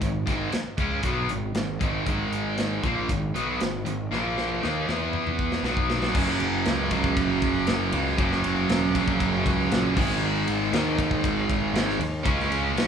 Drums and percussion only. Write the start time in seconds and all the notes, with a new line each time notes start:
0.02 kick, closed hi-hat
0.27 kick, snare, closed hi-hat
0.52 snare, closed hi-hat
0.78 kick, closed hi-hat
1.03 kick, closed hi-hat
1.29 closed hi-hat
1.55 snare, closed hi-hat
1.81 kick, closed hi-hat
2.06 kick, closed hi-hat
2.33 closed hi-hat
2.58 snare, closed hi-hat
2.84 kick, closed hi-hat
3.09 kick, closed hi-hat
3.36 closed hi-hat
3.61 snare, closed hi-hat
3.86 closed hi-hat
4.13 snare
4.38 snare
4.63 snare
4.89 snare
5.13 mid tom
5.27 mid tom
5.39 kick
5.52 snare
5.64 snare
5.77 kick
5.90 snare
6.03 snare
6.15 kick, crash
6.28 snare
6.40 ride
6.65 snare, ride
6.91 kick, ride
7.04 kick
7.17 kick, ride
7.42 kick, ride
7.67 snare, ride
7.93 ride
8.18 kick, ride
8.32 snare
8.44 ride
8.69 snare, ride
8.95 kick, ride
9.08 kick
9.20 kick, ride
9.46 kick, ride
9.72 snare, ride
9.97 kick, crash
10.48 ride
10.73 snare, ride
10.99 kick, ride
11.11 kick
11.24 kick, ride
11.50 kick, ride
11.75 snare, ride
11.89 snare
12.01 ride
12.26 kick, ride
12.40 snare
12.52 ride
12.77 snare, ride